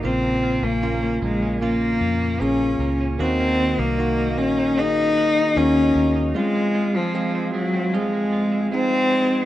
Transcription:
<<
  \new Staff \with { instrumentName = "French horn section" } { \time 4/4 \key bes \minor \tempo 4 = 76 <bes f' bes'>1 | <bes ges' ees''>1 | <c' aes' f''>1 | }
  \new Staff \with { instrumentName = "Tine electric piano" } { \time 4/4 \key bes \minor <des bes f'>4 <bes des' f'>4 <bes des' f'>4 <bes des' aes'>4 | <bes ees' ges'>4 <bes ees' ges'>4 <bes ees' aes'>4 <bes ees' ges'>4 | <aes c' f'>4 <aes c' aes'>4 <aes c' aes'>4 <aes c' ees'>4 | }
  \new Staff \with { instrumentName = "Tine electric piano" } { \clef bass \time 4/4 \key bes \minor bes,4. r2 r8 | ees4. r2 r8 | r1 | }
  \new Staff \with { instrumentName = "Clean electric guitar" } { \time 4/4 \key bes \minor <bes, f'>16 bes16 f'16 des'16 bes16 des'16 bes16 des'16 <bes, f'>16 bes16 f'16 des'16 bes16 des'16 bes16 des'16 | <ees ges'>16 bes16 ges'16 ees'16 bes16 ees'16 bes16 ees'16 <ees ges'>16 bes16 ges'16 ees'16 bes16 ees'16 bes16 ees'16 | f'16 aes16 f'16 c'16 aes16 c'16 aes16 c'16 <f, f'>16 aes16 f'16 c'16 aes16 c'16 aes16 c'16 | }
  \new Staff \with { instrumentName = "Cello" } { \time 4/4 \key bes \minor c'8. bes8. aes8 bes4 des'8. r16 | c'8. bes8. des'8 ees'4 des'8. r16 | aes8. f8. ges8 aes4 c'4 | }
  \new Staff \with { instrumentName = "Fingered electric bass" } { \clef bass \time 4/4 \key bes \minor bes,,8. bes,,8. bes,,4 f,8 bes,,8 des,8 | ees,8. c,8. bes,,4. ees,8 ees,8 | r1 | }
>>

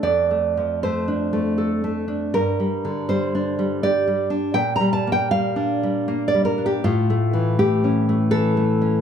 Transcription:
\new Staff \with { instrumentName = "Nylon-string guitar" } { \time 3/4 \key g \dorian \tempo 4 = 80 << { d''4 c''4. r8 | bes'4 c''4 d''4 | g''16 bes''16 a''16 g''16 f''4~ f''16 d''16 bes'16 g'16 | f'4 g'4 a'4 | } \\ { \tuplet 3/2 { f,8 a8 f8 a8 d'8 a8 a'8 a8 d'8 } | \tuplet 3/2 { g,8 g8 d8 g8 d'8 g8 g'8 g8 d'8 } | \tuplet 3/2 { bes,8 g8 bes8 g8 d'8 g8 bes8 g8 d'8 } | \tuplet 3/2 { a,8 a8 e8 a8 cis'8 a8 e8 a8 cis'8 } | } >> }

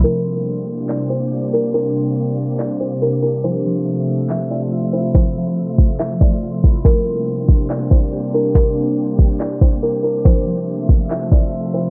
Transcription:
<<
  \new Staff \with { instrumentName = "Kalimba" } { \time 4/4 \key bes \lydian \tempo 4 = 141 bes'4 r4 d''8 c''4 bes'8 | bes'4 r4 d''8 c''8 bes'8 bes'8 | c''4 r4 e''8 d''4 c''8 | c''4 r4 e''8 d''8 r4 |
bes'4 r4 d''8 c''4 bes'8 | bes'4 r4 d''8 c''8 bes'8 bes'8 | c''4 r4 e''8 d''4 c''8 | }
  \new Staff \with { instrumentName = "Synth texture" } { \time 4/4 \key bes \lydian <bes g' c'' d''>1~ | <bes g' c'' d''>1 | <a f' e''>1~ | <a f' e''>1 |
<bes g' c'' d''>1~ | <bes g' c'' d''>1 | <a f' e''>1 | }
  \new Staff \with { instrumentName = "Harp" } { \time 4/4 \key bes \lydian c'8 c'4. c'4 g'8 d'8 | c'8 c'4. c'4 g'8 d'8 | f8 f4. f4 f'8 e'8 | f8 f4. f4 f'8 e'8 |
c'8 c'4. c'4 g'8 d'8 | c'8 c'4. c'4 g'8 d'8 | f8 f4. f4 f'8 e'8 | }
  \new Staff \with { instrumentName = "Ambient pad" } { \time 4/4 \key bes \lydian << { <g bes d'>1~ | <g bes d'>1 | <f a e''>1~ | <f a e''>1 |
<g bes d'>1~ | <g bes d'>1 | <f a e''>1 | } \\ { c1~ | c1~ | c1~ | c1 |
c1~ | c1 | c1 | } >> }
  \new DrumStaff \with { instrumentName = "Drums" } \drummode { \time 4/4 r4 r4 hc4 r4 | r4 r4 hc4 r4 | r4 r4 hc4 r4 | bd4 r8 bd8 hc8 bd8 r8 bd8 |
bd4 r8 bd8 hc8 bd8 r4 | bd4 r8 bd8 hc8 bd8 r4 | bd4 r8 bd8 hc8 bd8 r4 | }
>>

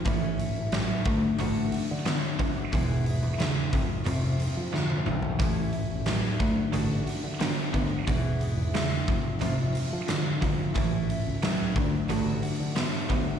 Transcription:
<<
  \new Staff \with { instrumentName = "Steel-string acoustic guitar" } { \time 4/4 \key d \lydian \tempo 4 = 90 <a, e a cis' e'>8 <a cis' e'>8 <e a cis' e'>8 <a d' fis'>8 <d a d' fis'>8 <a d' fis'>8 <d a d' fis'>8 <a d' fis'>8 | <e, b, e gis b e'>8 <e gis b e'>8 <e gis b e'>8 <f a c' f'>8 <f, c f a c' f'>8 <f a c' f'>8 <f a c' f'>8 <f a c' f'>8 | <a, e a cis' e'>8 <a cis' e'>8 <e a cis' e'>8 <a d' fis'>8 <d a d' fis'>8 <a d' fis'>8 <d a d' fis'>8 <a d' fis'>8 | <e, b, e gis b e'>8 <e gis b e'>8 <e gis b e'>8 <f a c' f'>8 <f, c f a c' f'>8 <f a c' f'>8 <f a c' f'>8 <f a c' f'>8 |
<a, e a cis' e'>8 <a cis' e'>8 <e a cis' e'>8 <a d' fis'>8 <d a d' fis'>8 <a d' fis'>8 <d a d' fis'>8 <a d' fis'>8 | }
  \new Staff \with { instrumentName = "Overdriven electric guitar" } { \clef bass \time 4/4 \key d \lydian <a, e>4 <a, fis>8 <d a>8 <d a>4 <d b>8 <d b>8 | <e, b,>4 <e, cis>8 <f, c>8 <f, c>4 <f, d>8 <f, d>8 | <a, e>4 <a, fis>8 <d a>8 <d a>4 <d b>8 <d b>8 | <e, b,>4 <e, cis>8 <f, c>8 <f, c>4 <f, d>8 <f, d>8 |
<a, e>4 <a, fis>8 <d a>8 <d a>4 <d b>8 <d b>8 | }
  \new Staff \with { instrumentName = "Overdriven electric guitar" } { \clef bass \time 4/4 \key d \lydian <a, e>4 <a, fis>8 <d a>8 <d a>4 <d b>8 <d b>8 | <e, b,>4 <e, cis>8 <f, c>8 <f, c>4 <f, d>8 <f, d>8 | <a, e>4 <a, fis>8 <d a>8 <d a>4 <d b>8 <d b>8 | <e, b,>4 <e, cis>8 <f, c>8 <f, c>4 <f, d>8 <f, d>8 |
<a, e>4 <a, fis>8 <d a>8 <d a>4 <d b>8 <d b>8 | }
  \new Staff \with { instrumentName = "Fingered electric bass" } { \clef bass \time 4/4 \key d \lydian a,,8 r16 a,,8 r16 d,16 r16 a,,8 r16 d8 r16 cis,16 r16 | e,8. e,8 r16 f,8 f,8 r16 f8. b,,8 | a,,8 r16 a,,8 r16 d,16 r16 a,,8 r16 d8 r16 d,16 r16 | e,8. e,8 r16 f,8 f,8 r16 f8 r16 f8 |
a,,8 r16 cis,8 r16 d,16 r16 a,,8 r16 d8 r16 d,16 r16 | }
  \new DrumStaff \with { instrumentName = "Drums" } \drummode { \time 4/4 <hho bd>8 hho8 <hho sn>8 <hho bd>8 hho8 hho8 <hho sn>8 <hho bd>8 | <hho bd>8 hho8 <hho sn>8 <hho bd>8 hho8 hho8 sn16 tommh16 toml16 tomfh16 | <hho bd>8 hho8 <hho sn>8 <hho bd>8 hho8 hho8 <hho sn>8 <hho bd>8 | <hho bd>8 hho8 <hho sn>8 <hho bd>8 hho8 hho8 <hho sn>8 <hho bd>8 |
<hho bd>8 hho8 <hho sn>8 <hho bd>8 hho8 hho8 <hho sn>8 <hho bd>8 | }
>>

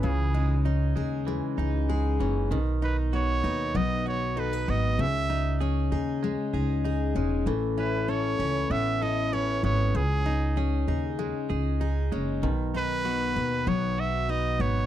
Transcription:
<<
  \new Staff \with { instrumentName = "Trumpet" } { \time 4/4 \key cis \minor \tempo 4 = 97 gis'4 r2. | r8 b'8 cis''4 dis''8 cis''8 b'8 dis''8 | e''4 r2. | r8 b'8 cis''4 e''8 dis''8 cis''8 cis''8 |
gis'4 r2. | r8 b'4. cis''8 e''8 dis''8 cis''8 | }
  \new Staff \with { instrumentName = "Clean electric guitar" } { \time 4/4 \key cis \minor r8 gis8 dis'8 gis8 e8 dis'8 gis8 e8 | dis8 dis'8 fis'8 dis'8 b8 fis'8 dis'8 b8 | r8 dis'8 gis'8 dis'8 gis8 gis'8 dis'8 gis8 | e8 cis'8 a'8 cis'8 b8 a'8 cis'8 b8 |
r8 dis'8 gis'8 dis'8 gis8 gis'8 dis'8 gis8 | dis8 dis'8 fis'4 b8 fis'8 dis'8 b8 | }
  \new Staff \with { instrumentName = "Steel-string acoustic guitar" } { \time 4/4 \key cis \minor cis8 dis'8 cis'8 gis'8 gis8 dis'8 gis'8 cis'8 | b,8 dis'8 b8 b'8 fis8 dis'8 a'16 b'16 b8 | cis8 dis'8 cis'8 gis'8 gis8 dis'8 gis'8 cis'8 | a8 e'8 cis'8 b'8 cis'8 e'8 b'8 cis'8 |
cis8 dis'8 cis'8 gis'8 gis8 dis'8 gis'8 cis'8 | b,8 dis'8 b8 b'8 fis4 b'8 b8 | }
  \new Staff \with { instrumentName = "Upright bass" } { \clef bass \time 4/4 \key cis \minor cis,4. dis,8. r16 cis,4 fis,,8 | b,,4. dis,8 b,,4. gis,,8 | cis,4. dis,8. r16 cis,4 e,,8 | a,,4. cis,8 a,,4. gis,,8 |
cis,4. dis,8. r16 cis,4 fis,,8 | b,,4. dis,8 b,,4. gis,,8 | }
>>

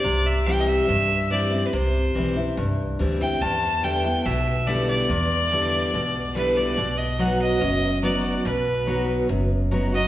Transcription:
<<
  \new Staff \with { instrumentName = "Fiddle" } { \time 4/4 \key c \lydian \tempo 4 = 143 d''8 e''8 \tuplet 3/2 { g''8 dis''16 e''8.~ } e''4 \tuplet 3/2 { d''4~ d''16 b'16 } | c''4. r2 g''8 | a''4 g''4 e''4 d''8 d''8~ | d''2. b'8 d''8~ |
d''8 dis''8 fis''8 dis''4. d''4 | b'4. r2 dis''8 | }
  \new Staff \with { instrumentName = "Steel-string acoustic guitar" } { \time 4/4 \key c \lydian << { r4 <e g c' e'>4 r4 <e g c' e'>8 <c' e'>8 | r4 <e g c' e'>8 <c' e'>8 r4 <e g c' e'>8 <c' e'>8 | r4 <d g b e'>8 <b e'>8 r4 <d g b e'>4 | r4 <d g b e'>4 r4 <d g b e'>4 |
r4 <fis b dis' fis'>4 r4 <fis b dis' fis'>4 | r4 <fis b dis' fis'>4 r4 <fis b dis' fis'>8 <dis' fis'>8 | } \\ { c2 g,2 | c2 g,2 | e,2 b,2 | e,2 b,2 |
b,2 fis,2 | b,2 fis,2 | } >> }
  \new Staff \with { instrumentName = "Upright bass" } { \clef bass \time 4/4 \key c \lydian c,2 g,2 | c,4 b,,4 c,4 d,4 | e,2 b,,2 | e,2 b,,2 |
b,,2 fis,,2 | b,,2 fis,,2 | }
>>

